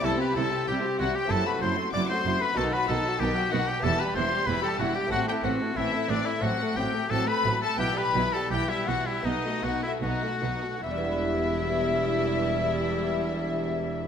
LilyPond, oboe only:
\new Staff \with { instrumentName = "Oboe" } { \time 4/4 \key e \minor \tempo 4 = 90 a'16 b'16 a'8 g'8 fis'16 g'16 a'16 b'16 c''8 d''16 c''8 b'16 | a'16 b'16 a'8 g'8 fis'16 g'16 a'16 b'16 c''8 b'16 a'16 fis'16 g'16 | fis'16 g'16 fis'8 e'8 d'16 e'16 fis'8 g'8 a'16 b'8 a'16 | g'16 b'8 a'16 g'16 e'16 fis'16 e'16 dis'8 fis'16 e'16 fis'4 |
e''1 | }